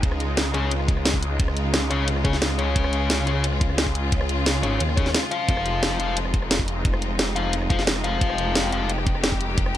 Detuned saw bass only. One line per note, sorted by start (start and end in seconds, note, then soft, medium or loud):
0.03 0.53 C#2 loud
0.54 1.89 C#2 loud
1.91 2.75 C#2 loud
2.76 3.26 C#2 loud
3.27 4.62 C#2 loud
4.63 4.79 G#1 loud
4.80 5.14 D#2 loud
5.49 5.98 F1 loud
6.00 7.35 F1 loud
7.36 8.20 F1 loud
8.21 8.71 F1 loud
8.72 9.78 F1 loud